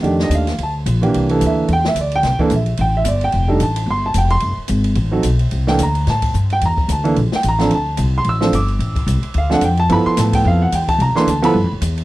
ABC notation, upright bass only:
X:1
M:4/4
L:1/8
Q:"Swing" 1/4=219
K:Cmix
V:1 name="Upright bass" clef=bass
F,,2 _E,,2 D,,2 B,,,2 | C,,2 D,,2 E,,2 D,,2 | C,, z B,,,2 A,,,2 G,,,2 | F,,,2 A,,,2 G,,,2 F,,,2 |
^F,,, z _A,,,2 =A,,,2 =B,,,2 | C,,2 D,,2 A,,2 G,,2 | E,,2 D,,2 B,,, z A,,,2 | D,,2 C,,2 A,,,2 G,,,2 |
A,,,2 C,, z D,,2 F,,2 | G,, z A,,2 F,,2 E,,2 | C,, z D,,2 (3G,, F,, D,, E,,2 |]